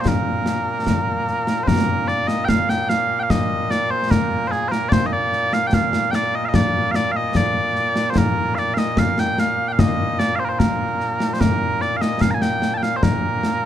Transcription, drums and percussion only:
0.05 concert bass drum medium
0.05 snare loud
0.46 snare medium
0.87 concert bass drum medium
0.87 snare medium
1.27 snare soft
1.47 snare medium
1.67 concert bass drum medium
1.67 snare loud
2.08 snare soft
2.28 snare medium
2.49 concert bass drum medium
2.49 snare loud
2.69 snare medium
2.90 snare medium
3.30 concert bass drum medium
3.30 snare medium
3.71 snare medium
4.11 concert bass drum medium
4.11 snare loud
4.52 snare soft
4.72 snare medium
4.92 concert bass drum medium
4.92 snare loud
5.33 snare soft
5.53 snare medium
5.73 concert bass drum medium
5.73 snare medium
5.93 snare medium
6.13 snare medium
6.54 concert bass drum medium
6.54 snare loud
6.94 snare medium
7.35 concert bass drum medium
7.35 snare loud
7.75 snare soft
7.96 snare medium
8.15 concert bass drum medium
8.15 snare medium
8.57 snare soft
8.77 snare medium
8.97 concert bass drum medium
8.97 snare loud
9.18 snare medium
9.38 snare medium
9.79 concert bass drum medium
9.79 snare loud
10.20 snare medium
10.60 concert bass drum medium
10.60 snare medium
11.00 snare soft
11.20 snare medium
11.41 concert bass drum medium
11.41 snare loud
11.81 snare soft
12.02 snare medium
12.21 concert bass drum soft
12.21 snare medium
12.42 snare medium
12.62 snare medium
12.83 snare medium
13.03 concert bass drum medium
13.03 snare loud
13.43 snare medium

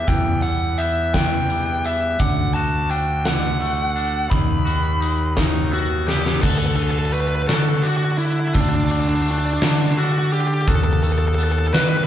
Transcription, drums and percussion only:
0.07 kick medium
0.07 closed hi-hat medium
0.43 closed hi-hat soft
0.79 closed hi-hat medium
1.14 kick medium
1.14 snare medium
1.14 closed hi-hat medium
1.50 closed hi-hat soft
1.85 closed hi-hat medium
2.19 kick medium
2.19 closed hi-hat medium
2.54 closed hi-hat soft
2.90 closed hi-hat soft
3.25 snare medium
3.25 closed hi-hat medium
3.61 closed hi-hat soft
3.96 closed hi-hat medium
4.31 kick medium
4.31 closed hi-hat medium
4.67 closed hi-hat medium
5.02 closed hi-hat medium
5.37 kick medium
5.37 snare medium
5.37 closed hi-hat medium
5.73 closed hi-hat soft
6.08 snare medium
6.26 snare medium
6.43 kick medium
6.43 crash medium
6.79 closed hi-hat soft
7.14 closed hi-hat soft
7.49 snare medium
7.49 closed hi-hat medium
7.84 closed hi-hat soft
8.19 closed hi-hat medium
8.54 kick medium
8.54 closed hi-hat medium
8.90 closed hi-hat medium
9.26 closed hi-hat medium
9.62 snare medium
9.62 closed hi-hat medium
9.97 closed hi-hat soft
10.32 closed hi-hat medium
10.68 kick medium
10.68 closed hi-hat medium
11.04 closed hi-hat medium
11.38 closed hi-hat medium
11.74 snare medium
11.74 closed hi-hat medium

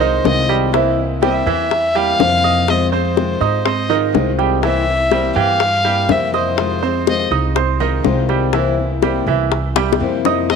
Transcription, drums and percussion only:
0.01 high bongo soft
0.25 high bongo soft
0.25 low bongo medium
0.49 high bongo soft
0.74 high bongo medium
1.23 high bongo medium
1.47 high bongo soft
1.71 high bongo medium
1.95 high bongo soft
2.20 high bongo soft
2.20 low bongo medium
2.44 high bongo soft
2.68 high bongo medium
3.17 high bongo medium
3.41 high bongo soft
3.66 high bongo medium
3.90 high bongo soft
4.15 high bongo soft
4.15 low bongo medium
4.39 high bongo soft
4.63 high bongo medium
5.11 high bongo medium
5.36 high bongo soft
5.60 high bongo medium
5.85 high bongo soft
6.09 high bongo soft
6.09 low bongo medium
6.34 high bongo soft
6.58 high bongo medium
7.07 high bongo medium
7.32 high bongo soft
7.56 high bongo medium
7.80 high bongo soft
8.04 high bongo soft
8.04 low bongo medium
8.29 high bongo soft
8.53 high bongo medium
9.02 high bongo medium
9.27 high bongo soft
9.52 high bongo medium
9.76 high bongo loud
9.93 high bongo loud
10.25 low bongo medium
10.50 high bongo medium

